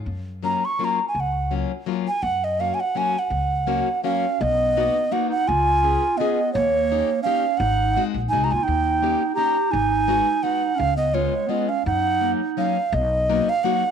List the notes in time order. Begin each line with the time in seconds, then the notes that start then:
0.06 F#2
0.43 F#3 A#3 C#4 F4 A#5
0.65 C#6
0.79 F#3 A#3 C#4 F4
0.84 A#5
1.08 G#5
1.15 C#2
1.20 F#5
1.51 F#3 A#3 C#4 F4
1.86 F#3 A#3 C#4 F4
2.08 G#5
2.23 F#2 F#5
2.44 D#5
2.59 F#3 A#3 C#4 F#4 F5
2.74 G#5
2.80 F#5
2.95 F#3 A#3 C#4 F#4 G#5
3.19 F#5
3.30 C#2
3.67 F#3 A#3 C#4 F#4
4.04 F#3 A#3 C#4 F#4 F5
4.41 B1 B3 D#5
4.76 A#3 B3 D#4 F#4
5.11 A#3 B3 D#4 F#4 F#5
5.29 D#4 F#5
5.47 C#2 F4 G#5
5.83 B3 C#4 F4 G#4
6.17 B3 C#4 F4 D#5
6.21 G#4
6.53 D#2 A#3 C#5
6.90 A#3 C#4 D#4 G4
7.23 A#3 C#4 G4 F5
7.27 D#4
7.58 G#1 D#4 F#5
7.96 G#3 C4 D#4 F#4
8.14 A#1
8.28 D#4 G#5
8.32 C2 G#3 C4 D#4 F#4
8.44 F#4 A#5
8.51 D#2 F4 G#5
8.62 D#4 G5
8.68 D#2
9.02 A#3 C#4 D#4 G4
9.35 A#3 C#4 D#4 G4 A#5
9.71 G#1 D#4 G#5
10.08 G#3 B3 D#4 F#4
10.42 G#3 B3 D#4 F#4 F#5
10.76 C#2 C#4 F5
10.96 B3 D#5
11.13 G#3 B3 C#4 F4 C#5
11.47 G#3 B3 C#4 F4 D#5
11.68 C#4 F5
11.86 F#2 D#4 F#5
12.20 F#3 A#3 C#4 D#4
12.57 F#3 A#3 C#4 D#4 F5
12.92 B1 D#5
13.29 F#3 A#3 B3 D#4 F#4
13.49 F5
13.64 F#3 A#3 B3 D#4 F#4 F#5